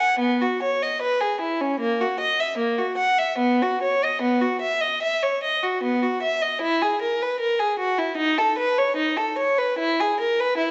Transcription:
0.00 F#5
0.19 B3
0.42 F#4
0.63 C#5
0.82 D#5
1.02 B4
1.21 G#4
1.41 E4
1.61 C#4
1.80 A#3
2.01 F#4
2.20 D#5
2.40 E5
2.58 A#3
2.78 F#4
2.98 F#5
3.19 E5
3.38 B3
3.62 F#4
3.82 C#5
4.03 D#5
4.22 B3
4.41 F#4
4.61 E5
4.81 D#5
5.02 E5
5.22 C#5
5.43 D#5
5.63 F#4
5.83 B3
6.03 F#4
6.22 E5
6.42 D#5
6.61 E4
6.82 G#4
7.02 A#4
7.22 B4
7.40 A#4
7.59 G#4
7.79 F#4
7.98 E4
8.17 D#4
8.38 A4
8.58 B4
8.78 C#5
8.97 D#4
9.17 A4
9.38 C#5
9.58 B4
9.79 E4
10.00 G#4
10.20 A#4
10.40 B4
10.58 E4

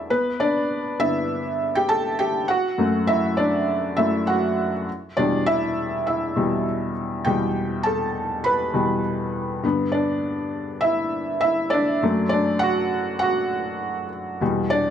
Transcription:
Already playing: D4 E4 D5 E5
0.10 B3 B4
0.40 D4 D5
0.99 G2 D3 B3 E4 E5
1.75 G4 G5
1.89 A4 A5
2.19 G4 G5
2.48 F#4 F#5
2.78 F#2 F#3 A3
3.07 E4 E5
3.37 D4 D5
3.97 F#2 F#3 A3 E4 E5
4.27 F#4 F#5
5.17 E2 B2 G3 D4 D5
5.46 E4 E5
6.07 E4 E5
6.36 E2 B2 G3
7.25 E2 B2 G3 G4 G5
7.83 A4 A5
8.44 B4 B5
8.73 E2 B2 G3
9.63 G2 D3 B3
9.92 D4 D5
10.81 E4 E5
11.41 E4 E5
11.70 D4 D5
12.03 F#2 F#3 A3
12.29 D4 D5
12.59 F#4 F#5
13.19 F#4 F#5
14.41 E2 B2 G3
14.70 D4 D5

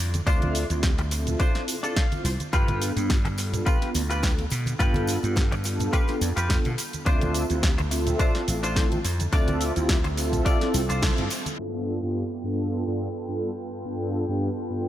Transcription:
0.00 F2
0.14 closed hi-hat, tambourine, high conga, shaker
0.26 D2 C4 D4 F4 C5 E5, kick, closed hi-hat, tambourine, shaker
0.42 closed hi-hat, tambourine, high conga, low conga
0.55 open hi-hat, tambourine, shaker
0.70 D2 C4 E4 F4, closed hi-hat, tambourine, shaker
0.83 kick, snare, closed hi-hat, tambourine, shaker
0.98 muted clean electric guitar stroke, closed hi-hat, tambourine, high conga
1.11 C4 F4 A4 E5, muted clean electric guitar stroke, open hi-hat, tambourine, shaker
1.27 closed hi-hat, tambourine, low conga, shaker
1.40 D4 F4 C5, kick, closed hi-hat, tambourine, shaker
1.55 C4 E4 F4, snare, closed hi-hat, tambourine
1.68 open hi-hat, tambourine, shaker
1.83 C4 D4 E4 F4 A4, closed hi-hat, tambourine, shaker
1.96 F5, kick, snare, closed hi-hat, tambourine, shaker
2.11 C4 E4 F4 C5, closed hi-hat, tambourine, high conga
2.24 C2 C5, muted clean electric guitar stroke, open hi-hat, tambourine, shaker
2.40 closed hi-hat, tambourine, high conga, shaker
2.52 G2 B3 F4 G4 A4 B4, kick, closed hi-hat, tambourine, shaker
2.68 closed hi-hat, tambourine, high conga, low conga
2.82 open hi-hat, tambourine, shaker
2.96 G2 B3 D4 F4 G4, closed hi-hat, tambourine, shaker
3.10 kick, snare, closed hi-hat, tambourine, shaker
3.25 muted clean electric guitar stroke, closed hi-hat, tambourine, high conga
3.37 B3 D4 F4 A4, muted clean electric guitar stroke, open hi-hat, tambourine, shaker
3.53 closed hi-hat, tambourine, low conga, shaker
3.66 F4 G4 B4, kick, closed hi-hat, tambourine, shaker
3.81 B3 D4 F4 A4, snare, closed hi-hat, tambourine
3.94 D2, open hi-hat, tambourine, shaker
4.10 F4 G4 B4, closed hi-hat, tambourine, shaker
4.23 B3 D4 F4 A4, kick, snare, closed hi-hat, tambourine, shaker
4.38 closed hi-hat, tambourine, high conga
4.50 B2, muted clean electric guitar stroke, open hi-hat, tambourine, shaker
4.66 closed hi-hat, tambourine, high conga, shaker
4.79 G2 B3 D4 F4 G4 A4 B4, kick, closed hi-hat, tambourine, shaker
4.94 closed hi-hat, tambourine, high conga, low conga
5.07 open hi-hat, tambourine, shaker
5.23 G2 B3 D4 F4 G4, closed hi-hat, tambourine, shaker
5.36 kick, snare, closed hi-hat, tambourine, shaker
5.52 muted clean electric guitar stroke, closed hi-hat, tambourine, high conga
5.64 B3 D4 F4 A4, muted clean electric guitar stroke, open hi-hat, tambourine, shaker
5.79 closed hi-hat, tambourine, low conga, shaker
5.93 F4 G4 B4, kick, closed hi-hat, tambourine, shaker
6.08 B3 D4 F4 A4, snare, closed hi-hat, tambourine
6.21 F2, open hi-hat, tambourine, shaker
6.36 F2 F4 G4 B4, closed hi-hat, tambourine, shaker
6.49 B3 D4 F4 A4, kick, snare, closed hi-hat, tambourine, shaker
6.65 B2, closed hi-hat, tambourine, high conga
6.78 muted clean electric guitar stroke, open hi-hat, tambourine, shaker
6.93 closed hi-hat, tambourine, high conga, shaker
7.06 D2 C4 D4 F4 A4 C5 E5, kick, closed hi-hat, tambourine, shaker
7.21 closed hi-hat, tambourine, high conga, low conga
7.34 open hi-hat, tambourine, shaker
7.49 D2 C4 E4 F4 G4, closed hi-hat, tambourine, shaker
7.63 kick, snare, closed hi-hat, tambourine, shaker
7.78 muted clean electric guitar stroke, closed hi-hat, tambourine, high conga
7.90 C4 F4 A4 E5, muted clean electric guitar stroke, open hi-hat, tambourine, shaker
8.06 closed hi-hat, tambourine, low conga, shaker
8.19 D4 F4 C5, kick, closed hi-hat, tambourine, shaker
8.34 C4 E4 F4 A4, snare, closed hi-hat, tambourine
8.48 A1, open hi-hat, tambourine, shaker
8.63 D4 F4 C5, closed hi-hat, tambourine, shaker
8.76 C4 E4 F4 A4, kick, snare, closed hi-hat, tambourine, shaker
8.92 closed hi-hat, tambourine, high conga
9.04 F2, muted clean electric guitar stroke, open hi-hat, tambourine, shaker
9.20 closed hi-hat, tambourine, high conga, shaker
9.32 D2 C4 D4 F4 A4 D5 E5, kick, closed hi-hat, tambourine, shaker
9.48 closed hi-hat, tambourine, high conga, low conga
9.61 open hi-hat, tambourine, shaker
9.76 D2 C4 E4 F4 G4, closed hi-hat, tambourine, shaker
9.89 kick, snare, closed hi-hat, tambourine, shaker
10.04 muted clean electric guitar stroke, closed hi-hat, tambourine, high conga
10.17 C4 F4 A4 E5, muted clean electric guitar stroke, open hi-hat, tambourine, shaker
10.33 kick, closed hi-hat, tambourine, low conga, shaker
10.45 D4 F4 D5, kick, closed hi-hat, tambourine, shaker
10.61 C4 E4 F4 A4, snare, closed hi-hat, tambourine
10.74 C2, open hi-hat, tambourine, shaker
10.89 C2 D4 F4 C5, closed hi-hat, tambourine, shaker
11.02 C4 E4 F4 A4, kick, snare, closed hi-hat, tambourine, shaker
11.17 G2, closed hi-hat, tambourine, high conga
11.30 muted clean electric guitar stroke, open hi-hat, tambourine, shaker
11.46 closed hi-hat, tambourine, high conga, shaker
11.58 G2 B3 D4 F4 A4 B4 G5
11.88 shaker
12.03 G2 B3 D4 F4 G4
12.44 G2 B3 D4 F4 A4, shaker
12.60 shaker
12.73 shaker
12.87 G2 B3 D4 F4 A4
13.01 shaker
13.16 shaker
13.28 G2 B3 D4 F4 A4
13.58 shaker
13.73 shaker
13.85 G2 B3 D4 F4 A4, shaker
14.15 shaker
14.29 G2 B3 D4 F4 G4, shaker
14.43 shaker
14.70 G2 B3 D4 F4 A4, shaker

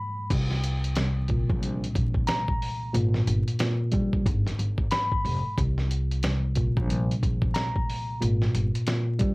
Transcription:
Already playing: G#2 B5
0.30 C2, kick, closed hi-hat, crash
0.51 snare
0.64 closed hi-hat
0.84 closed hi-hat
0.95 C2, snare, closed hi-hat
1.28 A#2, kick, closed hi-hat
1.49 A#1, kick
1.61 C2, closed hi-hat
1.84 closed hi-hat
1.95 A#1, kick, closed hi-hat
2.14 kick
2.27 A#5, snare, closed hi-hat
2.48 kick
2.62 open hi-hat
2.93 G#1 A#2, closed hi-hat
3.14 snare
3.27 G1, closed hi-hat
3.48 closed hi-hat
3.59 A#2, snare, closed hi-hat
3.92 A#1 G3, kick, closed hi-hat
4.13 kick
4.26 G1 G#2, kick, closed hi-hat
4.47 snare, closed hi-hat
4.59 G1, closed hi-hat
4.78 kick
4.91 B5, snare, closed hi-hat
5.12 kick
5.25 F1, open hi-hat
5.58 C2, kick, closed hi-hat
5.78 snare
5.91 closed hi-hat
6.12 closed hi-hat
6.23 C2, snare, closed hi-hat
6.56 A#2, kick, closed hi-hat
6.77 A#1, kick
6.88 C2, closed hi-hat
7.11 closed hi-hat
7.23 A#1, kick, closed hi-hat
7.42 kick
7.54 A#5, snare, closed hi-hat
7.76 kick
7.89 open hi-hat
8.20 G#1 A#2, closed hi-hat
8.42 snare
8.54 G1, closed hi-hat
8.75 closed hi-hat
8.87 A#2, snare, closed hi-hat
9.19 A#1 G3, kick, closed hi-hat

